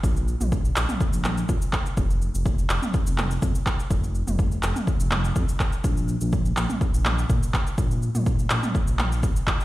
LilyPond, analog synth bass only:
\new Staff \with { instrumentName = "Analog synth bass" } { \clef bass \time 4/4 \key bes \mixolydian \tempo 4 = 124 bes,,8. bes,,8. bes,,16 r8 bes,,8. bes,16 r8. | f,,8. f,,8. f,,16 r8 f,,8. f,16 r8. | f,,8. f,,8. f,,16 r8 f,,8. f,16 r8. | bes,,8. bes,,8. bes,,16 r8 bes,,8. bes,16 r8. |
bes,,8. bes,,8. bes,,16 r8 bes,,8. aes,,16 r8. | }